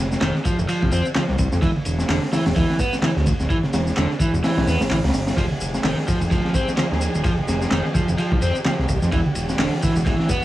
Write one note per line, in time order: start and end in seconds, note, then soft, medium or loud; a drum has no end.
0.00 0.17 F1 medium
0.12 snare medium
0.12 shaker soft
0.21 0.32 F1 loud
0.21 0.35 D#3 medium
0.21 snare loud
0.21 clap loud
0.21 ride medium
0.21 shaker soft
0.35 snare soft
0.45 0.56 F3 medium
0.45 kick loud
0.45 ride medium
0.45 shaker medium
0.59 0.66 F1 medium
0.59 ride soft
0.59 low conga medium
0.59 shaker soft
0.69 0.91 F3 medium
0.69 ride loud
0.69 shaker soft
0.82 0.90 C2 medium
0.82 kick loud
0.82 low conga medium
0.92 1.02 F2 loud
0.92 1.05 C4 loud
0.92 ride medium
0.92 shaker medium
1.05 shaker soft
1.15 1.22 F3 medium
1.15 snare loud
1.15 clap medium
1.15 ride medium
1.15 high conga medium
1.15 shaker soft
1.28 1.37 C2 loud
1.28 snare soft
1.38 1.49 C2 loud
1.38 kick medium
1.38 ride medium
1.38 shaker medium
1.52 1.60 F2 loud
1.52 snare soft
1.52 shaker soft
1.62 1.72 E1 medium
1.62 1.69 E3 loud
1.62 kick loud
1.62 ride medium
1.62 shaker soft
1.76 high conga medium
1.85 2.04 E1 medium
1.85 ride medium
1.85 shaker medium
1.99 snare medium
1.99 shaker soft
2.09 2.19 E1 medium
2.09 2.22 D3 medium
2.09 snare loud
2.09 clap loud
2.09 open hi-hat medium
2.09 shaker soft
2.23 snare soft
2.32 2.44 E3 medium
2.32 snare loud
2.32 open hi-hat medium
2.32 high conga medium
2.32 shaker medium
2.46 2.54 E1 medium
2.46 snare loud
2.46 open hi-hat medium
2.46 low conga medium
2.46 shaker soft
2.56 2.66 E1 loud
2.56 2.79 E3 medium
2.56 kick loud
2.56 ride medium
2.56 shaker soft
2.70 snare soft
2.79 2.92 B3 loud
2.79 kick medium
2.79 ride medium
2.79 shaker medium
2.93 snare soft
2.93 shaker soft
3.02 3.10 E3 medium
3.02 snare loud
3.02 clap loud
3.02 ride medium
3.02 high conga medium
3.02 shaker soft
3.16 3.33 D2 medium
3.16 snare soft
3.26 kick loud
3.26 ride medium
3.26 shaker medium
3.40 3.47 D1 loud
3.40 snare soft
3.40 shaker soft
3.50 3.57 E3 loud
3.50 kick medium
3.50 ride medium
3.50 shaker soft
3.63 snare soft
3.63 high conga medium
3.73 3.92 E1 medium
3.73 snare loud
3.73 ride medium
3.73 shaker medium
3.87 snare soft
3.87 shaker soft
3.96 4.07 E1 loud
3.96 4.10 D3 medium
3.96 snare loud
3.96 clap loud
3.96 ride medium
3.96 shaker soft
4.10 snare soft
4.20 4.32 E3 medium
4.20 kick medium
4.20 ride medium
4.20 shaker medium
4.34 4.41 E1 loud
4.34 ride soft
4.34 low conga medium
4.34 shaker soft
4.44 4.66 E3 medium
4.44 snare loud
4.44 open hi-hat medium
4.44 shaker soft
4.57 4.65 B1 medium
4.57 snare loud
4.57 open hi-hat medium
4.57 low conga medium
4.67 4.77 E2 loud
4.67 4.80 B3 loud
4.67 snare medium
4.67 open hi-hat medium
4.67 shaker medium
4.81 4.89 A1 soft
4.81 snare loud
4.81 open hi-hat medium
4.81 shaker soft
4.90 5.01 A1 medium
4.90 4.97 E3 medium
4.90 snare loud
4.90 clap loud
4.90 open hi-hat medium
4.90 high conga medium
4.90 shaker soft
5.04 5.11 C#2 loud
5.04 snare medium
5.04 open hi-hat medium
5.09 snare loud
5.09 open hi-hat medium
5.14 5.32 G1 loud
5.14 snare loud
5.14 open hi-hat medium
5.14 shaker medium
5.27 snare loud
5.27 open hi-hat medium
5.27 shaker soft
5.37 5.47 F1 medium
5.37 5.44 F3 loud
5.37 9.09 F3 medium
5.37 9.09 D#4 medium
5.37 10.45 G4 medium
5.37 9.09 G#4 medium
5.37 kick loud
5.37 ride loud
5.37 shaker soft
5.51 high conga medium
5.61 5.79 F1 medium
5.61 ride medium
5.61 shaker medium
5.74 snare medium
5.74 shaker soft
5.84 5.94 F1 loud
5.84 5.97 D#3 medium
5.84 snare loud
5.84 clap loud
5.84 open hi-hat medium
5.84 shaker soft
5.98 snare soft
6.08 6.19 F3 medium
6.08 kick loud
6.08 ride medium
6.08 shaker medium
6.21 6.29 F1 medium
6.21 ride soft
6.21 low conga loud
6.21 shaker soft
6.31 6.41 F1 loud
6.31 6.54 F3 medium
6.31 kick loud
6.31 ride loud
6.31 shaker soft
6.45 snare soft
6.54 6.67 C4 loud
6.54 kick medium
6.54 ride medium
6.54 shaker medium
6.68 snare soft
6.68 shaker soft
6.78 6.85 F3 medium
6.78 snare loud
6.78 clap loud
6.78 ride loud
6.78 high conga medium
6.78 shaker soft
6.92 7.08 D#2 medium
6.92 snare medium
7.01 ride medium
7.01 shaker medium
7.15 7.23 D#1 loud
7.15 ride soft
7.15 shaker soft
7.24 7.32 F3 loud
7.24 kick loud
7.24 ride medium
7.24 shaker soft
7.38 high conga loud
7.48 7.67 F1 medium
7.48 snare medium
7.48 ride medium
7.48 shaker medium
7.61 snare medium
7.61 shaker soft
7.71 7.82 F1 loud
7.71 7.85 D#3 medium
7.71 snare loud
7.71 clap loud
7.71 ride loud
7.71 shaker soft
7.85 snare soft
7.95 8.06 F3 medium
7.95 kick loud
7.95 ride medium
7.95 high conga medium
7.95 shaker medium
8.08 8.16 F1 loud
8.08 ride soft
8.08 low conga medium
8.08 shaker soft
8.18 8.41 F3 medium
8.18 ride medium
8.18 shaker soft
8.32 8.39 C2 medium
8.32 kick loud
8.32 low conga loud
8.42 8.52 F2 loud
8.42 8.55 C4 loud
8.42 ride medium
8.42 shaker medium
8.55 shaker soft
8.65 8.72 F3 medium
8.65 snare loud
8.65 clap loud
8.65 ride medium
8.65 high conga loud
8.65 shaker soft
8.79 8.86 C2 medium
8.79 snare soft
8.89 8.99 C2 medium
8.89 kick medium
8.89 ride medium
8.89 shaker medium
9.02 9.10 F2 loud
9.02 snare soft
9.02 shaker soft
9.12 9.23 E1 medium
9.12 10.45 E3 medium
9.12 9.19 E3 loud
9.12 10.45 D4 medium
9.12 10.45 F#4 medium
9.12 kick loud
9.12 ride medium
9.12 shaker soft
9.26 high conga loud
9.35 9.54 E1 medium
9.35 ride medium
9.35 shaker medium
9.49 snare soft
9.49 shaker soft
9.59 9.69 E1 medium
9.59 9.72 D3 medium
9.59 snare loud
9.59 clap loud
9.59 open hi-hat medium
9.59 shaker soft
9.72 snare soft
9.83 9.94 E3 medium
9.83 kick medium
9.83 ride medium
9.83 high conga medium
9.83 shaker medium
9.96 10.04 E1 loud
9.96 ride soft
9.96 low conga medium
9.96 shaker soft
10.06 10.16 E1 loud
10.06 10.29 E3 medium
10.06 kick loud
10.06 ride medium
10.06 shaker soft
10.20 snare soft
10.29 10.42 B3 loud
10.29 kick medium
10.29 ride medium
10.29 shaker medium